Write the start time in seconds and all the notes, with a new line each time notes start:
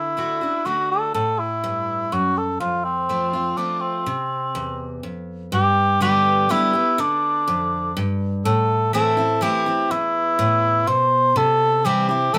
Already playing: D3 E4
0.17 D3 A3 D4 F#4
0.41 D4 F#4
0.65 D3 A3 D4 F#4
0.91 A4
1.14 A2 A4
1.39 E4
1.64 G2
2.12 F#2 F#4
2.38 A4
2.60 F2 F4
2.84 C4
3.09 F3 A3 C4 F4
3.33 C4 F4
3.57 F3 A3 C4 D4 F4
3.81 C4
4.06 C3
4.55 E2
5.03 F2
5.52 G2 G4
6.01 D3 G3 B3 G4
6.49 D3 G3 B3 E4 G4
6.73 B3 G4
6.98 D3 D4
7.48 F2
7.97 G2
8.45 A2 A4
8.93 E3 A3 C4 E4 A4
9.17 C4 E4
9.41 E3 A3 C4 E4 G4
9.66 C4 E4
9.91 E2 E4
10.39 A2
10.87 B2 C5
11.36 C3 A4
11.85 E3 G3 C4 E4 G4
12.09 C4 E4 G4
12.34 E3 G3 C4 E4 A4